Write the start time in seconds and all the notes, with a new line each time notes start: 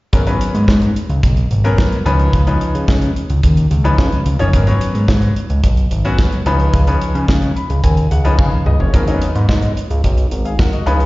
0.13 G#1 F#3 B3 C#4 A#4, kick, closed hi-hat
0.26 F#3 B3 C#4 B4, closed hi-hat
0.41 closed hi-hat
0.54 G#2, closed hi-hat
0.68 G#2, kick, snare
0.82 closed hi-hat
0.96 closed hi-hat
1.09 C#2, closed hi-hat
1.23 B1, kick, closed hi-hat
1.37 closed hi-hat
1.51 G#1, closed hi-hat
1.64 F#3 B3 C#4 A#4, closed hi-hat
1.78 kick, snare
1.92 closed hi-hat
2.05 C#2 F3 C#4 D#4 B4, closed hi-hat
2.19 closed hi-hat
2.33 C#2, kick, closed hi-hat
2.47 F3 C#4 D#4 B4, closed hi-hat
2.61 closed hi-hat
2.75 C#3, closed hi-hat
2.88 C#3, kick, snare
3.02 closed hi-hat
3.16 closed hi-hat
3.30 C#2, closed hi-hat
3.43 D#2, kick, closed hi-hat
3.57 closed hi-hat
3.71 C#2, closed hi-hat
3.84 F3 C#4 D#4 B4, closed hi-hat
3.98 C#3, kick, snare
4.12 closed hi-hat
4.26 C#2, closed hi-hat
4.39 F#1 F3 C#4 D#4 C#5, closed hi-hat
4.53 G#1 F#3 B3 C#4 A#4, kick, closed hi-hat
4.67 F#3 B3 C#4 C#5, closed hi-hat
4.81 closed hi-hat
4.95 G#2, closed hi-hat
5.08 G#2, kick, snare
5.22 closed hi-hat
5.36 closed hi-hat
5.50 C#2, closed hi-hat
5.64 B1, kick, closed hi-hat
5.77 closed hi-hat
5.91 G#1, closed hi-hat
6.05 F#3 B3 C#4 F#4, closed hi-hat
6.19 kick, snare
6.32 closed hi-hat
6.46 C#2 F3 C#4 D#4 B4, closed hi-hat
6.60 closed hi-hat
6.73 C#2, kick, closed hi-hat
6.87 F3 C#4 D#4 B4, closed hi-hat
7.01 closed hi-hat
7.15 C#3, closed hi-hat
7.28 C#3, kick, snare
7.42 closed hi-hat
7.56 B5, closed hi-hat
7.70 C#2, closed hi-hat
7.84 D#2 G#5, kick, closed hi-hat
7.97 closed hi-hat
8.11 C#2 F#5, closed hi-hat
8.24 F3 C#4 D#4 B4, closed hi-hat
8.39 C#3 D#4 B4 F5, kick, high tom
8.52 mid tom
8.66 C#2 D#5, mid tom
8.80 F#1 F4 C#5, floor tom
8.93 G#1 F#3 B3 C#4 A#4, kick, closed hi-hat
9.07 F#3 A#3 C#4 D#4, closed hi-hat
9.14 B3
9.22 closed hi-hat
9.35 G#2, closed hi-hat
9.49 G#2, kick, snare
9.62 closed hi-hat
9.77 closed hi-hat
9.90 C#2, closed hi-hat
10.04 B1, kick, closed hi-hat
10.18 closed hi-hat
10.31 G#1, closed hi-hat
10.45 G#4 F5, closed hi-hat
10.59 A#4 F#5, kick, snare
10.73 F#4 D#5, closed hi-hat
10.86 C#2 F3 C#4 D#4 B4, closed hi-hat
11.00 closed hi-hat